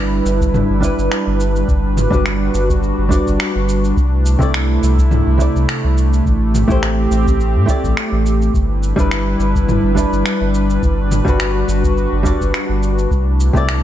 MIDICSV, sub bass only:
0, 0, Header, 1, 2, 480
1, 0, Start_track
1, 0, Key_signature, 1, "major"
1, 0, Tempo, 571429
1, 1415, Time_signature, 4, 2, 24, 8
1, 11617, End_track
2, 0, Start_track
2, 0, Title_t, "Sub bass"
2, 0, Program_c, 0, 38
2, 0, Note_on_c, 0, 31, 76
2, 177, Note_off_c, 0, 31, 0
2, 214, Note_on_c, 0, 31, 87
2, 541, Note_off_c, 0, 31, 0
2, 588, Note_on_c, 0, 31, 88
2, 770, Note_off_c, 0, 31, 0
2, 827, Note_on_c, 0, 31, 77
2, 912, Note_off_c, 0, 31, 0
2, 1067, Note_on_c, 0, 31, 72
2, 1378, Note_off_c, 0, 31, 0
2, 1414, Note_on_c, 0, 31, 98
2, 1741, Note_off_c, 0, 31, 0
2, 1786, Note_on_c, 0, 31, 77
2, 2097, Note_off_c, 0, 31, 0
2, 2136, Note_on_c, 0, 31, 92
2, 2461, Note_off_c, 0, 31, 0
2, 2507, Note_on_c, 0, 31, 91
2, 2690, Note_off_c, 0, 31, 0
2, 2747, Note_on_c, 0, 31, 80
2, 2832, Note_off_c, 0, 31, 0
2, 2988, Note_on_c, 0, 31, 73
2, 3298, Note_off_c, 0, 31, 0
2, 3334, Note_on_c, 0, 36, 101
2, 3661, Note_off_c, 0, 36, 0
2, 3706, Note_on_c, 0, 36, 71
2, 4017, Note_off_c, 0, 36, 0
2, 4056, Note_on_c, 0, 36, 91
2, 4381, Note_off_c, 0, 36, 0
2, 4426, Note_on_c, 0, 36, 88
2, 4610, Note_off_c, 0, 36, 0
2, 4668, Note_on_c, 0, 36, 80
2, 4752, Note_off_c, 0, 36, 0
2, 4909, Note_on_c, 0, 36, 76
2, 5219, Note_off_c, 0, 36, 0
2, 5256, Note_on_c, 0, 33, 100
2, 5581, Note_off_c, 0, 33, 0
2, 5626, Note_on_c, 0, 33, 76
2, 5937, Note_off_c, 0, 33, 0
2, 5973, Note_on_c, 0, 33, 93
2, 6346, Note_on_c, 0, 45, 90
2, 6358, Note_off_c, 0, 33, 0
2, 6431, Note_off_c, 0, 45, 0
2, 6586, Note_on_c, 0, 33, 94
2, 6671, Note_off_c, 0, 33, 0
2, 6823, Note_on_c, 0, 33, 88
2, 7136, Note_off_c, 0, 33, 0
2, 7174, Note_on_c, 0, 31, 102
2, 7501, Note_off_c, 0, 31, 0
2, 7545, Note_on_c, 0, 31, 74
2, 7857, Note_off_c, 0, 31, 0
2, 7891, Note_on_c, 0, 31, 96
2, 8219, Note_off_c, 0, 31, 0
2, 8261, Note_on_c, 0, 31, 86
2, 8447, Note_off_c, 0, 31, 0
2, 8504, Note_on_c, 0, 31, 79
2, 8591, Note_off_c, 0, 31, 0
2, 8746, Note_on_c, 0, 31, 71
2, 9057, Note_off_c, 0, 31, 0
2, 9093, Note_on_c, 0, 31, 99
2, 9420, Note_off_c, 0, 31, 0
2, 9465, Note_on_c, 0, 31, 74
2, 9777, Note_off_c, 0, 31, 0
2, 9813, Note_on_c, 0, 31, 97
2, 10140, Note_off_c, 0, 31, 0
2, 10185, Note_on_c, 0, 31, 88
2, 10369, Note_off_c, 0, 31, 0
2, 10423, Note_on_c, 0, 31, 81
2, 10510, Note_off_c, 0, 31, 0
2, 10662, Note_on_c, 0, 31, 74
2, 10975, Note_off_c, 0, 31, 0
2, 11013, Note_on_c, 0, 36, 101
2, 11340, Note_off_c, 0, 36, 0
2, 11384, Note_on_c, 0, 36, 76
2, 11617, Note_off_c, 0, 36, 0
2, 11617, End_track
0, 0, End_of_file